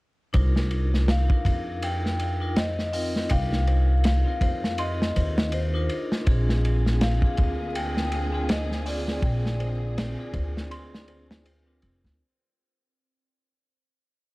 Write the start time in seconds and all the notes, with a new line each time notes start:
0.33 C2 D4 D#4 F4 A#4 C5, kick, ride
0.56 snare
0.71 ride
0.94 snare
1.08 F5, snare, ride
1.28 D4 D#4 F4 A#4, kick
1.45 F2, kick, ride
1.82 G5, ride
2.06 snare
2.19 ride
2.40 D4 D#4 F4 A#4
2.56 C5 D#5, snare, ride
2.79 snare
2.93 C4 D#4 F4 A#4 F5, open hi-hat
3.16 snare
3.29 C2 D4 D#4 F4 A#4 F5 G5, kick, ride
3.53 snare
3.67 C5, ride
4.04 F5, snare, ride
4.25 C4 D#4 F4 A#4
4.41 F2 C5, kick, ride
4.64 snare
4.78 D#5 C6, ride
5.02 snare
5.16 D#2 C5, ride
5.38 snare
5.52 C5, ride
5.74 D4 D#4 F4 A#4
5.89 ride
6.12 snare
6.25 A#1 D3 A#3 C4 D4 F4 G#4 C5, kick, ride
6.49 snare
6.65 ride
6.86 snare
7.01 F5, snare, ride
7.22 C4 D4 F4 G#4, kick
7.37 D2, kick, ride
7.75 G5, ride
7.97 snare
8.12 ride
8.33 C4 D4 F4 G#4
8.49 C5 D#5, snare, ride
8.72 snare
8.86 C4 D4 F4 G#4 D5 F5, open hi-hat
9.08 snare
9.22 A#1 C4 D4 F4 G#4 G5, kick, ride
9.46 snare
9.60 C5, ride
9.98 snare, ride
10.17 C4 D4 F4 G#4
10.34 D2 C5, kick, ride
10.57 snare
10.71 C6, ride
10.94 snare
11.08 C5, ride
11.31 snare
11.45 C5, ride
11.66 C4 D4 F4 A#4
11.82 F1, ride
12.04 D2, snare